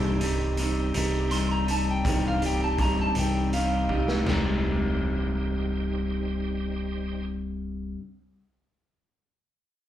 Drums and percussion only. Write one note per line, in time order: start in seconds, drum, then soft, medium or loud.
0.21 closed hi-hat medium
0.57 closed hi-hat medium
0.94 closed hi-hat medium
1.31 closed hi-hat medium
1.68 closed hi-hat medium
2.05 kick medium
2.05 closed hi-hat medium
2.42 closed hi-hat medium
2.78 kick medium
2.78 closed hi-hat medium
3.15 closed hi-hat medium
3.53 closed hi-hat soft
3.89 kick soft
4.08 snare medium
4.26 snare medium
4.26 floor tom medium
4.26 crash medium